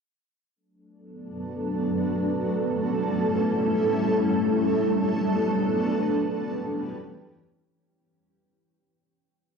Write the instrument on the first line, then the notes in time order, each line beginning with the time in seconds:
ambient pad
0.56 F#3 A3 B3 D4 A4
2.34 G3 C#4 E4 A4
4.12 F#3 B3 D4 A4
5.90 E3 G3 C#4 G4